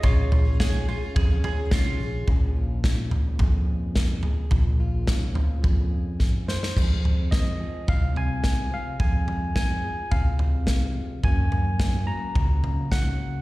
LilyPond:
<<
  \new Staff \with { instrumentName = "Tine electric piano" } { \time 4/4 \key bes \minor \tempo 4 = 107 des''2. r4 | r1 | r2. r8 c''8~ | c''4 ees''4 f''8 aes''4 f''8 |
aes''4 aes''4 f''4. r8 | aes''4. bes''4. ges''4 | }
  \new Staff \with { instrumentName = "Mandolin" } { \time 4/4 \key bes \minor f'4 aes'8 f'8 aes'8 aes'8 f'4 | r1 | r1 | r1 |
r1 | r1 | }
  \new Staff \with { instrumentName = "Twelve-string acoustic guitar" } { \time 4/4 \key bes \minor <bes, aes des' f' aes'>8 <aes des' f' aes'>16 <des' f' aes'>16 <bes, aes des' f' aes'>8 <aes des' f' aes'>16 <des' f' aes'>8 <des' f' aes'>16 <aes des' f' aes'>8 <bes, aes des' f' aes'>8 <aes des' f' aes'>8 | r1 | r1 | r1 |
r1 | r1 | }
  \new Staff \with { instrumentName = "Steel-string acoustic guitar" } { \time 4/4 \key bes \minor << { r1 | <f aes des' aes'>8 f'8 des'4 aes'4 aes8 aes'8 | r8 f'8 des'4 aes'2 | <f aes c' aes'>8 aes8 c'8 aes'8 c'4 aes'8 c'8 |
aes'8 aes8 c'8 aes'8 c'2 | <ges bes des' ges'>8 bes8 des'8 ges'8 des'4 ges'8 des'8 | } \\ { r1 | bes,4. f4 f,4. | bes,4. f4 f,8 aes,8 ges,8 | f,4. f4 c4. |
f,4. f4 c4 f,8 | ges,4. ges4 des4. | } >> }
  \new Staff \with { instrumentName = "Fingered electric bass" } { \clef bass \time 4/4 \key bes \minor bes,,8 bes,,4. f,8 r8 c,8 bes,,8 | bes,,2 f,2 | bes,,2 f,2 | f,2 c,2 |
f,2 c,2 | ges,2 des,2 | }
  \new DrumStaff \with { instrumentName = "Drums" } \drummode { \time 4/4 <bd tomfh>8 tomfh8 <bd sn>4 <bd tomfh>8 tomfh8 <bd sn>4 | <bd tomfh>4 <bd sn>8 tomfh8 <bd tomfh>4 <bd sn>8 tomfh8 | <bd tomfh>4 <bd sn>8 tomfh8 <bd tomfh>4 <bd sn>8 sn16 sn16 | <cymc bd tomfh>8 tomfh8 <bd sn>4 <bd tomfh>8 tomfh8 <bd sn>4 |
<bd tomfh>8 tomfh8 <bd sn>4 <bd tomfh>8 tomfh8 <bd sn>4 | <bd tomfh>8 tomfh8 <bd sn>4 <bd tomfh>8 tomfh8 <bd sn>4 | }
>>